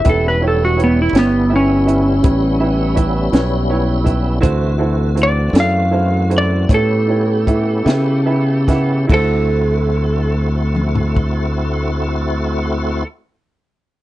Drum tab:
CC |------------------------|------------------------|x-----------------------|
HH |x---x-x---x-x---x-x---x-|x---x-x---x-x---x-x---x-|------------------------|
SD |------o-----------o-----|------o-----------o---o-|------------------------|
T2 |------------------------|------------------------|--------o---------------|
FT |------------------------|------------------------|---------o--------------|
BD |o-----------o---o-----o-|o-----------o---o-----o-|o---------o-------------|